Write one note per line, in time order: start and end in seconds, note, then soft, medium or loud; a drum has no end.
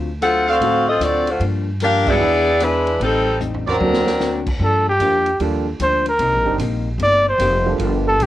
0.00 0.57 D2 medium
0.00 0.10 C4 soft
0.00 0.10 F4 soft
0.22 0.49 D3 soft
0.22 0.49 F#3 medium
0.22 0.46 C4 medium
0.22 0.50 C4 medium
0.22 0.47 F4 medium
0.22 0.50 F4 medium
0.22 0.46 A4 loud
0.22 0.46 F#5 loud
0.22 hi-hat pedal medium
0.22 ride medium
0.47 0.88 C4 medium
0.47 0.56 F#4 loud
0.47 0.88 F#4 medium
0.47 0.88 A4 medium
0.47 0.57 C5 medium
0.47 0.57 D5 medium
0.47 0.57 F5 loud
0.47 0.88 F5 loud
0.60 0.98 A2 medium
0.60 0.89 D3 soft
0.60 0.85 F#3 medium
0.60 0.89 F#3 soft
0.60 0.85 A3 soft
0.60 0.85 C4 soft
0.60 0.90 C4 soft
0.60 0.85 D4 medium
0.60 0.85 F4 medium
0.60 0.90 F4 soft
0.60 ride medium
0.88 1.01 C4 medium
0.88 1.01 F4 medium
0.88 1.01 A4 medium
0.88 1.01 D#5 medium
1.00 1.37 D2 medium
1.00 1.29 D3 medium
1.00 1.29 F#3 medium
1.00 1.29 C4 medium
1.00 1.28 C4 medium
1.00 1.30 F4 medium
1.00 1.28 F#4 medium
1.00 1.28 A4 medium
1.00 1.28 D5 medium
1.00 cross-stick medium
1.00 hi-hat pedal medium
1.00 ride medium
1.27 1.43 A3 medium
1.27 1.42 F4 medium
1.27 1.43 F#4 medium
1.27 1.43 C5 medium
1.27 ride soft
1.40 2.16 G2 medium
1.40 1.68 G2 soft
1.40 1.69 F3 soft
1.40 1.69 A#3 soft
1.40 1.70 D4 soft
1.40 ride medium
1.80 2.08 G2 soft
1.80 2.09 F3 medium
1.80 2.09 A#3 medium
1.80 2.06 D4 loud
1.80 2.10 D4 medium
1.80 2.06 G4 medium
1.80 2.06 A#4 loud
1.80 2.06 F5 loud
1.80 hi-hat pedal soft
1.80 ride medium
2.06 2.20 F#3 medium
2.06 2.20 G#3 medium
2.06 2.20 B3 medium
2.06 2.62 B3 loud
2.06 2.20 D4 medium
2.06 2.20 E4 medium
2.06 2.62 E4 medium
2.06 2.58 G#4 medium
2.06 2.62 G#4 medium
2.06 2.58 B4 medium
2.06 2.58 D5 medium
2.06 2.62 D5 loud
2.06 2.58 E5 medium
2.06 kick medium
2.06 crash medium
2.20 2.96 E2 medium
2.20 2.48 E3 soft
2.20 2.49 B3 soft
2.20 2.49 D4 soft
2.20 2.49 G#4 soft
2.60 2.88 E3 medium
2.60 3.02 G#3 medium
2.60 2.89 B3 medium
2.60 2.89 D4 medium
2.60 3.02 D4 medium
2.60 3.02 E4 medium
2.60 2.89 G#4 medium
2.60 3.02 B4 medium
2.60 cross-stick medium
2.60 hi-hat pedal soft
2.60 ride medium
2.87 ride soft
3.00 3.76 A1 medium
3.00 3.28 A2 soft
3.00 3.29 G3 soft
3.00 3.39 G3 medium
3.00 3.39 C4 medium
3.00 3.29 C4 soft
3.00 3.39 D#4 medium
3.00 3.30 D#4 soft
3.00 3.39 A4 medium
3.00 ride medium
3.40 3.68 A2 medium
3.40 3.68 G3 medium
3.40 3.69 C4 medium
3.40 3.69 D#4 medium
3.40 floor tom soft
3.40 hi-hat pedal medium
3.54 floor tom medium
3.66 4.44 F#3 medium
3.66 4.44 C4 medium
3.66 4.44 D4 medium
3.66 3.76 F#4 medium
3.66 3.76 A#4 medium
3.66 4.44 A#4 medium
3.66 3.76 C5 medium
3.66 3.76 D5 loud
3.66 floor tom medium
3.80 4.56 D2 medium
3.80 4.08 D3 soft
3.80 4.04 F#3 medium
3.80 4.04 A#3 soft
3.80 4.09 A#3 soft
3.80 4.05 C4 soft
3.80 4.09 C4 soft
3.80 4.05 D4 medium
3.80 4.09 F#4 medium
3.80 4.05 A4 medium
3.80 high tom medium
3.94 snare medium
4.07 snare medium
4.20 4.48 D3 medium
4.20 4.48 A#3 medium
4.20 4.49 C4 medium
4.20 4.49 F#4 medium
4.20 snare medium
4.20 hi-hat pedal medium
4.46 kick medium
4.46 crash medium
4.60 4.99 G2 loud
4.60 4.88 G2 soft
4.60 4.88 F3 soft
4.60 4.89 A#3 soft
4.60 4.89 D4 medium
4.64 4.87 A4 medium
4.89 5.38 G4 medium
4.99 5.39 F2 medium
4.99 5.28 G2 medium
4.99 5.18 F3 medium
4.99 5.28 F3 medium
4.99 5.18 A#3 medium
4.99 5.29 A#3 medium
4.99 5.18 D4 medium
4.99 5.29 D4 medium
4.99 5.18 G4 medium
4.99 hi-hat pedal soft
4.99 ride medium
5.26 ride soft
5.39 5.79 D#2 medium
5.39 5.68 G2 soft
5.39 5.68 F3 medium
5.39 5.64 G3 medium
5.39 5.64 A#3 medium
5.39 5.69 A#3 soft
5.39 5.64 D4 medium
5.39 5.69 D4 medium
5.39 5.64 F4 medium
5.39 5.64 A4 medium
5.39 ride medium
5.79 6.18 D2 medium
5.79 6.08 G2 medium
5.79 6.08 F3 medium
5.79 6.08 A#3 medium
5.79 6.08 D4 medium
5.79 6.06 C5 medium
5.79 hi-hat pedal medium
5.79 ride medium
6.06 6.58 A#4 medium
6.06 ride soft
6.19 6.32 C2 medium
6.19 6.47 C3 soft
6.19 6.48 G3 soft
6.19 6.48 A#3 soft
6.19 6.49 D#4 medium
6.19 ride medium
6.32 6.45 A#1 medium
6.45 6.58 G1 medium
6.45 6.58 G3 medium
6.45 6.58 C4 medium
6.45 6.58 D4 medium
6.45 6.58 D#4 medium
6.45 6.58 A#4 medium
6.58 6.98 A#1 medium
6.58 6.88 C3 medium
6.58 6.88 G3 medium
6.58 6.88 A#3 medium
6.58 6.89 D#4 medium
6.58 hi-hat pedal medium
6.58 ride medium
6.98 7.37 G1 medium
6.98 7.28 C3 soft
6.98 7.28 G3 soft
6.98 7.29 A#3 soft
6.98 ride medium
7.03 7.29 D#4 soft
7.03 7.26 D5 loud
7.28 7.77 C5 medium
7.38 7.78 F1 loud
7.38 7.68 C3 medium
7.38 7.58 D#3 medium
7.38 7.68 G3 medium
7.38 7.58 A#3 medium
7.38 7.68 A#3 medium
7.38 7.58 C4 medium
7.38 7.68 D#4 medium
7.38 7.58 G4 medium
7.38 hi-hat pedal medium
7.38 ride medium
7.66 8.17 G3 medium
7.66 8.17 A#3 medium
7.66 8.17 D4 medium
7.66 8.17 F4 medium
7.66 8.17 A4 medium
7.78 8.18 G1 medium
7.78 8.08 G2 medium
7.78 8.08 F3 medium
7.78 ride medium
7.82 8.09 A#3 medium
7.82 8.09 D4 medium
8.08 8.24 A4 medium
8.19 8.26 A#1 medium
8.19 8.26 G2 medium
8.19 8.26 F3 medium
8.19 8.26 A#3 medium
8.19 hi-hat pedal medium
8.19 ride medium
8.23 8.26 D4 medium
8.23 8.26 G4 medium